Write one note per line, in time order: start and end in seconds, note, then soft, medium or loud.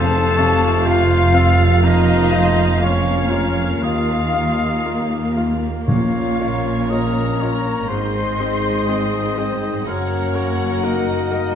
0.00 3.80 F1 medium
0.00 0.36 F2 medium
0.00 1.32 F2 medium
0.00 3.80 F2 medium
0.00 1.81 C3 medium
0.00 1.84 C3 medium
0.00 3.66 F4 medium
0.00 5.63 F4 medium
0.00 0.88 A4 loud
0.00 0.39 C5 medium
0.00 5.68 F5 medium
0.00 0.87 A5 loud
0.00 0.90 A5 loud
0.37 0.83 C3 medium
0.37 0.83 F4 soft
0.37 0.87 C#5 medium
0.37 0.83 F5 medium
0.86 1.31 C4 medium
0.86 1.31 F4 medium
0.86 1.83 F4 loud
0.86 1.36 C5 medium
0.86 1.31 F5 medium
0.86 1.84 F5 medium
0.86 1.83 F5 medium
1.34 1.79 C4 medium
1.34 1.79 F4 medium
1.34 1.86 A4 medium
1.34 1.79 F5 medium
1.83 2.31 F2 medium
1.83 7.90 A#3 medium
1.83 5.51 A#3 medium
1.83 2.81 D#4 loud
1.83 2.34 A#4 medium
1.83 2.85 D#5 medium
1.83 2.84 D#5 medium
2.32 2.78 A#3 soft
2.32 2.78 F4 medium
2.32 2.82 C5 medium
2.32 2.78 F5 medium
2.81 3.28 A#3 medium
2.81 3.85 C#4 medium
2.81 3.28 F4 medium
2.81 3.32 C#5 medium
2.81 3.86 C#5 medium
2.81 3.29 F5 medium
2.86 3.83 C#5 medium
3.30 3.79 A#3 soft
3.30 3.79 F4 soft
3.30 3.84 A#4 medium
3.30 3.80 F5 soft
3.82 4.32 D#2 medium
3.82 5.63 D#2 medium
3.82 5.50 D#4 medium
3.82 5.36 F4 medium
3.82 5.36 D#5 medium
3.82 5.37 F5 medium
3.82 5.38 F5 medium
4.33 4.81 A#3 soft
4.33 4.81 F4 soft
4.33 4.81 F5 soft
4.86 5.33 A#3 soft
4.86 5.33 F4 soft
4.86 5.33 F5 soft
5.37 5.83 A#3 soft
5.37 5.84 F4 soft
5.37 5.84 F5 soft
5.86 7.86 A#1 medium
5.86 7.85 A#2 medium
5.86 7.37 A#2 medium
5.86 6.38 A#2 medium
5.86 7.86 A#3 medium
5.86 7.86 C#4 medium
5.86 6.92 F4 medium
5.86 7.86 F4 soft
5.86 6.91 C#5 medium
5.86 7.86 C#5 medium
5.86 6.86 F5 medium
5.86 6.87 F5 medium
6.40 6.87 A#3 soft
6.40 6.88 F4 soft
6.40 6.88 C#5 soft
6.89 7.37 A#3 soft
6.89 7.37 F4 soft
6.89 7.89 A#4 medium
6.89 7.38 C#5 soft
6.89 7.42 D#5 medium
6.89 7.90 A#5 medium
7.40 7.86 A#3 soft
7.40 7.87 F4 soft
7.40 7.90 C#5 medium
7.40 7.87 C#5 soft
7.88 9.81 G#1 medium
7.88 9.81 G#2 medium
7.88 8.37 G#2 soft
7.88 9.86 C4 medium
7.88 9.86 G#4 medium
7.88 8.90 C5 medium
7.88 9.40 C5 medium
7.88 9.86 D#5 medium
7.88 9.40 C6 medium
7.92 9.87 G#3 medium
7.92 9.87 D#4 medium
7.92 9.38 C6 medium
8.40 8.84 C4 soft
8.40 8.84 G#4 soft
8.40 8.84 D#5 soft
8.88 9.33 C4 soft
8.88 9.33 G#4 soft
8.88 9.86 D#5 medium
8.88 9.33 D#5 soft
9.37 9.82 C4 soft
9.37 9.86 C4 medium
9.37 9.82 G#4 soft
9.37 9.86 C5 medium
9.37 9.82 D#5 soft
9.85 11.55 F#1 medium
9.85 10.34 F#2 medium
9.85 11.55 F#2 medium
9.85 11.55 A#3 medium
9.85 10.85 C#4 medium
9.85 11.55 F#4 medium
9.85 11.55 A#4 soft
9.85 10.37 A#4 medium
9.85 10.81 C#5 medium
9.85 10.85 C#5 medium
9.85 11.55 F#5 medium
10.35 10.79 A#3 soft
10.35 10.79 A#4 soft
10.35 10.86 C#5 medium
10.83 11.28 A#3 soft
10.83 11.55 D#4 medium
10.83 11.28 A#4 soft
10.83 11.55 A#4 medium
10.83 11.55 D#5 medium
11.31 11.55 A#3 soft
11.31 11.55 A#4 soft